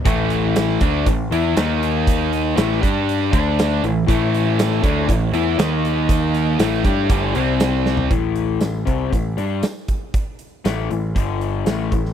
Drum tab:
HH |x-x-x-x-x-x-x-x-|x-x-x-x-x-x-x-x-|x-x-x-x-x-x-x-x-|x-x-x-x-x-x-x---|
TB |----x-------x---|----x-------x---|----x-------x---|----x-------x---|
SD |----oo------o---|----oo------o---|----oo------o---|----oo------o-o-|
FT |----------------|----------------|----------------|---------------o|
BD |o-----o-o-------|o-----o---o-----|o-----o-o-------|o-----o-o-------|

HH |x-x-x-x-x-x-x-x-|x-x-x-x-x-x-x-x-|
TB |----x-------x---|----x-------x---|
SD |----o-------o---|----o-------o--o|
FT |----------------|----------------|
BD |o-----o-o-----o-|o-------o-----o-|